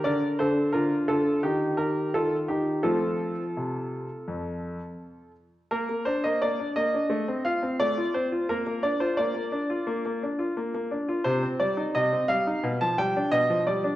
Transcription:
<<
  \new Staff \with { instrumentName = "Grand piano" } { \time 4/4 \key bes \major \tempo 4 = 86 <bes' d''>8 <a' c''>8 <f' bes'>8 <f' a'>8 <ees' g'>8 <g' bes'>8 <f' a'>8 <ees' g'>8 | <f' a'>2.~ <f' a'>8 r8 | bes'8 c''16 ees''16 d''8 ees''4 f''8 d''8 c''8 | bes'8 d''16 c''16 d''2~ d''8 r8 |
c''8 d''8 ees''8 f''8. a''16 g''8 ees''8 d''8 | }
  \new Staff \with { instrumentName = "Grand piano" } { \time 4/4 \key bes \major d8 d8 d8 d8 ees8 ees8 ees8 ees8 | <f a c'>4 c4 f,4 r4 | bes16 bes16 d'16 bes16 bes16 d'16 bes16 d'16 a16 c'16 f'16 c'16 a16 f'16 c'16 f'16 | bes16 bes16 d'16 f'16 bes16 bes16 d'16 f'16 bes16 bes16 d'16 f'16 bes16 bes16 d'16 f'16 |
c16 c'16 g16 ees'16 c16 c'16 g16 ees'16 b,16 f16 g16 d'16 b,16 f16 g16 d'16 | }
>>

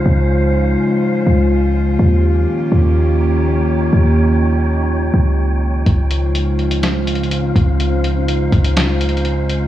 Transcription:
<<
  \new Staff \with { instrumentName = "Synth texture" } { \time 4/4 \key des \lydian \tempo 4 = 124 <des' c'' f''>1 | <ees' des'' g''>1~ | <ees' des'' g''>1 | <des' c'' f''>1~ |
<des' c'' f''>1 | }
  \new Staff \with { instrumentName = "Analog synth pad" } { \time 4/4 \key des \lydian <des aes ees' f' c''>1 | <ees bes des' g'>1~ | <ees bes des' g'>1 | <des aes ees' f' c''>1~ |
<des aes ees' f' c''>1 | }
  \new Staff \with { instrumentName = "808-style bass" } { \clef bass \time 4/4 \key des \lydian des,4. r4 des,4. | ees,4 r8 ees,2~ ees,8 | ees,2~ ees,8 des,4. | des,2.~ des,8 des,8~ |
des,4. des,2~ des,8 | }
  \new DrumStaff \with { instrumentName = "Drums" } \drummode { \time 4/4 r4 r4 r4 r4 | r4 r4 r4 r4 | r4 r4 r4 r4 | <hh bd>8 hh8 hh8 hh16 hh16 \tuplet 3/2 { <hh sn>16 r16 r16 hh16 hh16 hh16 } hh8 <hh bd>8 |
hh8 hh8 hh8 <hh bd>16 hh16 \tuplet 3/2 { <hh sn>16 r16 r16 hh16 hh16 hh16 } hh8 hh8 | }
>>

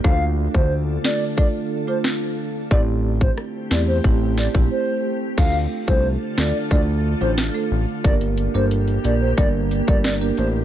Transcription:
<<
  \new Staff \with { instrumentName = "Soft synth lead" } { \time 4/4 \key d \minor \tempo 4 = 90 f''8 r16 c''8 r16 d''8 d''16 r8 c''16 r4 | d''16 r8 c''16 r8 d''16 c''16 r8 d''16 r16 c''8. r16 | f''8 r16 c''8 r16 d''8 d''16 r8 c''16 r4 | d''16 r8 c''16 r8 d''16 c''16 d''16 r8 d''16 d''16 r16 c''16 r16 | }
  \new Staff \with { instrumentName = "Marimba" } { \time 4/4 \key d \minor <a d' f' a'>4. <a d' f' a'>8 <a d' f' a'>16 r8 <a d' f' a'>16 r4 | <a c' e' g'>4. <a c' e' g'>8 <a c' e' g'>16 r8 <a c' e' g'>16 r4 | <a d' f' a'>8. <a d' f' a'>16 r8 <a d' f' a'>16 r16 <a d' f' a'>16 r8 <a d' f' a'>16 r16 <a d' f' a'>16 r8 | <bes d' g' bes'>8. <bes d' g' bes'>16 r8 <bes d' g' bes'>16 r16 <bes d' g' bes'>16 r8 <bes d' g' bes'>16 r16 <bes d' g' bes'>16 r8 | }
  \new Staff \with { instrumentName = "Ambient pad" } { \time 4/4 \key d \minor <d d' f' a'>1 | <a c' g'>1 | <d d' f' a'>1 | <bes g'>1 | }
  \new Staff \with { instrumentName = "Analog synth bass" } { \clef bass \time 4/4 \key d \minor d,8. d,8. r2 r8 | a,,4 r8 e,8 a,,8. bes,,16 r4 | d,8 r16 c,8 r16 d,16 r16 d,8. a,,8 r16 a,,16 r16 | g,,8. g,,8. bes,,8 g,,8. g,,8. a,,8 | }
  \new DrumStaff \with { instrumentName = "Drums" } \drummode { \time 4/4 bd8. bd16 r8 sn8 bd4 sn4 | bd8. bd16 ss8 sn8 bd8 sn16 bd16 r4 | <cymc bd>8. bd16 r8 sn8 bd4 sn4 | <hh bd>16 hh16 hh8 hh16 hh16 hh8 <hh bd>8 hh16 bd16 <hh sn>8 hh8 | }
>>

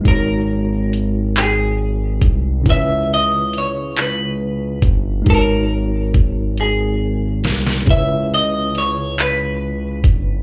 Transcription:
<<
  \new Staff \with { instrumentName = "Clean electric guitar" } { \time 6/8 \key cis \dorian \tempo 4. = 46 ais'4 r8 gis'4 r8 | e''8 dis''8 cis''8 b'4 r8 | ais'4 r8 gis'4 r8 | e''8 dis''8 cis''8 b'4 r8 | }
  \new Staff \with { instrumentName = "Tine electric piano" } { \time 6/8 \key cis \dorian <gis dis' fis' ais' cis''>2. | <cis cis' e' b' cis''>2. | <gis dis' fis' ais' b' cis''>2. | <cis cis' e' b' cis''>2. | }
  \new Staff \with { instrumentName = "Analog synth bass" } { \clef bass \time 6/8 \key cis \dorian gis,,2~ gis,,8 bis,,8 | cis,2~ cis,8 g,,8 | gis,,2~ gis,,8 bis,,8 | cis,2~ cis,8 g,,8 | }
  \new DrumStaff \with { instrumentName = "Drums" } \drummode { \time 6/8 <hh bd>4 hh8 <hc hh>4 <hh bd>8 | <hh bd>4 hh8 <hc hh>4 <hh bd>8 | <hh bd>4 <hh bd>8 hh4 <hh sn>16 sn16 | <hh bd>4 hh8 <hc hh>4 <hh bd>8 | }
>>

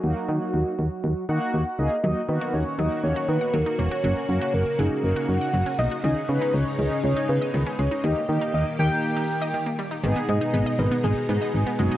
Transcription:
<<
  \new Staff \with { instrumentName = "Soft synth lead" } { \time 4/4 \key dis \phrygian \tempo 4 = 120 fis'2~ fis'8 fis''4 dis''8 | dis''8 b'8 cis''8 dis''8 cis''8 b'8 ais'8 cis''8~ | cis''4 ais'8 gis'8 ais'8 fis''4 dis''8 | dis''8 b'8 cis''8 dis''8 cis''8 b'4 cis''8 |
dis''4 dis''8 g''2 r8 | r8 dis''4 b'8 gis'8 gis'4 fis'8 | }
  \new Staff \with { instrumentName = "Analog polysynth" } { \time 4/4 \key dis \phrygian <ais dis' fis'>4. r4 <ais dis' fis'>8 r8 <ais dis' gis'>8 | <ais dis' fis'>8 <ais dis' fis'>8 r8 <ais dis' fis'>4. r4 | <ais cis' fis'>8 <ais cis' fis'>8 r8 <ais cis' dis'>4. r4 | <cis' dis' gis'>8 <cis' dis' b'>8 r8 <cis' dis' gis'>4. r4 |
<ais dis' g'>8 <ais dis' g'>8 r8 <ais dis' g'>4. r4 | <b dis' gis'>4. r4 <b dis' gis'>8 r8 <b dis' gis'>8 | }
  \new Staff \with { instrumentName = "Synth arpeggio sound" } { \time 4/4 \key dis \phrygian r1 | fis16 r8 fis'16 r8 fis16 r8 fis'16 r16 fis''16 fis16 dis'16 ais16 fis'16 | fis16 r8 fis'16 r8 fis16 r8 fis'16 r16 fis''16 fis16 cis'16 ais16 fis'16 | dis16 r8 dis'16 r8 dis16 r8 dis'16 r16 dis''16 dis16 cis'16 gis16 dis'16 |
dis16 r8 dis'16 r8 dis16 r8 dis'16 r16 dis''16 dis16 ais16 g16 dis'16 | dis16 b16 gis16 dis'16 b16 dis''16 dis16 b16 gis16 r16 b16 dis''16 r16 b16 gis16 dis'16 | }
  \new Staff \with { instrumentName = "String machine" } { \time 4/4 \key dis \phrygian << { r1 | <ais fis'>1~ | <ais fis'>1 | <gis dis'>1 |
<ais g'>1 | <gis dis'>1 | } \\ { r1 | dis1 | cis1~ | cis1 |
dis1 | b,1 | } >> }
  \new Staff \with { instrumentName = "FM bass" } { \clef bass \time 4/4 \key dis \phrygian dis,16 r16 dis16 r16 dis,16 r16 dis,16 r16 dis,16 r16 dis16 r16 dis,16 r16 cis,16 r16 | dis,16 r16 dis16 r16 dis,16 r16 dis,16 r16 dis,16 r16 dis16 r16 dis,16 r16 e,,16 r16 | fis,,16 r16 fis,16 r16 fis,,16 r16 fis,,16 r16 fis,,16 r16 fis,16 r16 fis,,16 r16 b,,16 r16 | cis,16 r16 cis16 r16 cis,16 r16 cis,16 r16 cis,16 r16 cis16 r16 cis,16 r16 cis,16 r16 |
dis,16 r16 dis16 r16 dis,16 r16 dis,16 r2 r16 | gis,,16 r16 gis,16 r16 gis,,16 r16 gis,,16 r16 gis,,16 r16 gis,16 r16 gis,,16 r16 fis,,16 r16 | }
>>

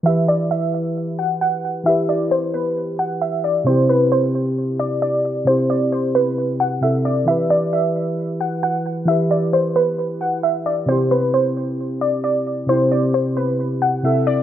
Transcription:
<<
  \new Staff \with { instrumentName = "Synth pluck" } { \time 4/4 \key e \minor \tempo 4 = 133 e''8 d''8 e''4. fis''8 fis''4 | e''8 d''8 c''8 b'4 fis''8 e''8 d''8 | c''8 b'8 c''4. d''8 d''4 | c''8 d''8 c''8 b'4 fis''8 e''8 d''8 |
e''8 d''8 e''4. fis''8 fis''4 | e''8 d''8 c''8 b'4 fis''8 e''8 d''8 | c''8 b'8 c''4. d''8 d''4 | c''8 d''8 c''8 b'4 fis''8 e''8 d''8 | }
  \new Staff \with { instrumentName = "Synth keys" } { \time 4/4 \key e \minor <e e' g' b'>1 | <e e' g' b'>1 | <c c' e' g'>1 | <c c' e' g'>2. <c c' e' a'>4 |
<e e' g' b'>1 | <e e' g' b'>1 | <c c' e' g'>1 | <c c' e' g'>2. <c c' e' a'>4 | }
>>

